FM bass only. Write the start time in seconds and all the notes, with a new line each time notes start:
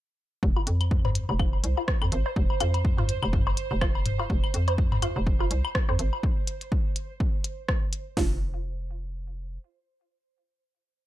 0.43 F1
0.67 F2
1.29 F1
1.64 C2
2.02 F2
2.12 G#1
2.36 F1
2.60 F2
3.23 F1
3.71 F1
4.30 F1
4.54 F2
5.16 F1
5.51 C2
5.89 F2
5.99 G#1
8.17 F1